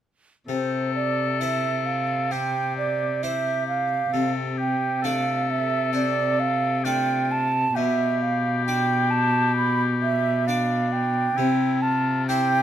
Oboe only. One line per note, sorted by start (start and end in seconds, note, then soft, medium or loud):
0.48 2.33 A4 medium
2.32 3.23 G4 medium
3.23 4.12 G4 medium
4.13 4.59 A4 medium
4.58 5.01 G4 medium
5.02 6.86 A4 medium
6.84 7.48 F4 medium
7.75 10.43 G4 medium
10.46 11.38 D4 medium
11.36 11.82 E4 medium
11.82 12.27 F4 medium
12.28 12.62 G4 medium